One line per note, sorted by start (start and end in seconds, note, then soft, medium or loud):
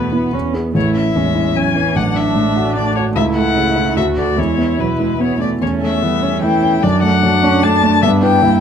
0.00 0.31 E2 soft
0.00 0.37 B2 soft
0.00 0.14 A3 soft
0.00 0.25 B3 soft
0.00 0.55 B3 soft
0.00 0.34 B4 soft
0.12 0.35 B3 soft
0.12 0.33 E4 soft
0.32 0.73 E2 soft
0.32 0.56 C#4 soft
0.54 0.74 B3 soft
0.54 0.72 E4 soft
0.54 0.73 G#4 soft
0.74 1.92 A1 soft
0.74 1.13 A3 soft
0.74 1.17 E4 soft
0.74 0.94 C#5 soft
0.95 1.28 C#4 soft
0.95 1.58 E5 medium
1.15 1.48 E2 soft
1.15 1.57 G#3 soft
1.15 1.55 C#4 soft
1.35 1.67 E4 soft
1.55 1.76 F#3 soft
1.55 1.97 C#4 soft
1.55 1.88 C#4 soft
1.55 1.97 G#5 medium
1.75 1.97 E3 soft
1.75 1.96 E4 soft
1.95 3.12 A1 soft
1.95 2.37 F#3 soft
1.95 3.15 D4 soft
1.95 2.17 F#5 medium
2.15 2.47 D4 soft
2.15 2.75 E5 medium
2.35 2.67 A2 soft
2.35 2.56 G#3 soft
2.55 3.15 A3 soft
2.55 2.88 F#4 soft
2.76 3.08 D4 soft
2.76 2.95 D5 medium
2.96 3.16 F#4 soft
2.96 3.04 C#5 medium
3.15 3.94 C#2 soft
3.15 4.35 A3 soft
3.15 3.98 E4 soft
3.15 3.24 E5 medium
3.36 3.68 A3 soft
3.36 3.96 F#5 medium
3.56 3.88 C#3 soft
3.75 3.96 E4 soft
3.96 4.36 D2 soft
3.96 4.39 F#4 soft
3.96 4.05 E5 medium
4.17 4.36 F#4 soft
4.17 4.36 A4 soft
4.17 4.40 D5 soft
4.37 5.58 E2 soft
4.37 4.74 G#3 soft
4.37 5.41 E4 soft
4.37 4.81 C#5 medium
4.58 4.91 B3 soft
4.78 5.12 B2 soft
4.78 4.87 F#3 soft
4.78 5.22 B4 soft
4.99 5.20 G#3 soft
4.99 5.33 E4 soft
5.20 5.53 B3 soft
5.20 5.40 B3 soft
5.20 5.40 C#5 soft
5.41 5.60 A3 soft
5.41 5.61 E4 soft
5.41 5.49 D5 soft
5.61 6.80 E2 soft
5.61 6.04 A3 soft
5.61 6.04 C#4 soft
5.61 5.70 C#5 medium
5.81 6.14 A3 soft
5.81 6.41 E5 medium
6.02 6.35 E3 soft
6.02 6.44 G3 soft
6.02 6.24 B3 soft
6.22 6.55 C#4 soft
6.22 6.44 C#4 soft
6.42 6.82 E3 soft
6.42 6.75 A3 soft
6.42 6.84 E4 soft
6.42 6.84 G5 medium
6.62 6.83 C#4 soft
6.82 7.99 F#2 soft
6.82 7.25 F#3 soft
6.82 8.02 D4 soft
6.82 7.02 D5 medium
7.03 7.35 A3 soft
7.03 7.65 F#5 medium
7.23 7.55 F#3 soft
7.23 7.45 A3 medium
7.43 7.64 C#4 medium
7.43 7.75 D4 soft
7.63 7.95 A3 soft
7.63 7.84 D4 medium
7.63 8.02 A5 medium
7.83 8.04 A3 medium
7.83 8.03 D4 soft
8.02 8.41 G2 medium
8.02 8.44 B3 soft
8.02 8.43 D4 soft
8.02 8.10 E5 medium
8.22 8.40 E4 soft
8.22 8.41 B4 soft
8.22 8.60 G5 medium
8.42 8.60 G2 medium
8.42 8.60 A#3 medium
8.42 8.60 E4 soft